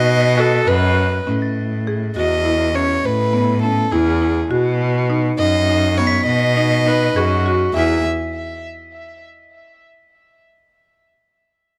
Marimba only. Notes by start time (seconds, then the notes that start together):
Already playing: F#4
0.38 F#4
0.68 B4
1.27 C#4
1.87 G#4
2.16 F#4
2.45 E4
2.75 C#4
3.33 B3
3.63 C#4
3.92 E4
4.22 E4
4.51 F#4
5.10 D#4
5.40 D#4
5.69 D#4
5.99 B3
6.57 D#4
6.86 D#4
7.16 G#4
7.46 F#4
7.77 E4